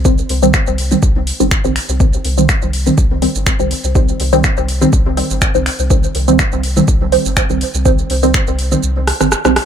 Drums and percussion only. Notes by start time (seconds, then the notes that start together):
0.05 kick, shaker
0.18 shaker
0.29 open hi-hat
0.43 shaker
0.54 finger snap, kick, shaker
0.67 shaker
0.78 open hi-hat
0.91 shaker
1.03 kick, shaker
1.27 open hi-hat
1.40 shaker
1.51 finger snap, kick, shaker
1.65 shaker
1.76 finger snap, open hi-hat
1.89 shaker
2.00 kick, shaker
2.13 shaker
2.25 open hi-hat
2.38 shaker
2.49 finger snap, kick, shaker
2.62 shaker
2.73 open hi-hat
2.86 shaker
2.98 kick, shaker
3.22 open hi-hat
3.35 shaker
3.46 finger snap, kick, shaker
3.60 shaker
3.71 open hi-hat
3.84 shaker
3.95 kick, shaker
4.08 shaker
4.20 open hi-hat
4.33 shaker
4.44 finger snap, kick, shaker
4.57 shaker
4.69 open hi-hat
4.82 shaker
4.93 kick, shaker
5.17 open hi-hat
5.30 shaker
5.42 finger snap, kick, shaker
5.55 shaker
5.66 finger snap, open hi-hat
5.79 shaker
5.90 kick, shaker
6.04 shaker
6.15 open hi-hat
6.28 shaker
6.39 finger snap, kick, shaker
6.52 shaker
6.63 open hi-hat
6.77 shaker
6.88 kick, shaker
7.12 open hi-hat
7.25 shaker
7.37 finger snap, kick, shaker
7.50 shaker
7.61 open hi-hat
7.74 shaker
7.85 kick, shaker
7.99 shaker
8.10 open hi-hat
8.23 shaker
8.34 finger snap, kick, shaker
8.47 shaker
8.59 open hi-hat
8.72 shaker
8.83 shaker
9.07 cross-stick, open hi-hat
9.21 cross-stick, shaker
9.32 cross-stick, shaker
9.45 cross-stick, shaker
9.56 cross-stick, open hi-hat